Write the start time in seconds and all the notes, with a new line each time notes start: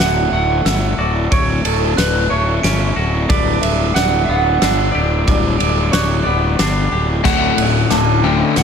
Already playing: D2 D3 A3 D4 E4 F#4
0.00 D1 D3 F#5 F#6, snare, ride
0.32 D1 A3 F#5
0.65 G1 E6, snare, ride
0.98 D1 F#4 D5
1.31 D1 D2 C#5 D7, kick, ride
1.64 D1 A4, ride
1.97 D1 D3 B4 F#6, snare, ride
2.30 D1 A3 C#5
2.63 G1 C#4 D7, snare, ride
2.96 D1 F#4
3.29 D1 G2 D3 D4 A4 B4 D5 D6, kick, ride
3.62 D1 E5, ride
3.94 D1 G3 F#5 F#6, snare, ride
4.25 D1 B3 F#5
4.62 G1 D4 E6, snare, ride
4.92 D1 G4 D5
5.27 D1 G2 D6, kick, ride
5.59 D1 D5, ride
5.91 D1 G3 C#5 F#6, snare, ride
6.23 D1 B3 D5
6.59 G1 D4 D6, snare, ride
6.92 D1 G4
7.24 D1 D2 A2 D3 F#3 C#4 D4 E5 F#5 F#6, kick, snare, crash
7.57 D1 D2 A2 F#6, ride
7.90 D1 D2 A2 A3 A5 D6, snare, ride
8.24 D2 A2 D3 G5
8.56 D1 D2 A2 A3 F#5, snare, ride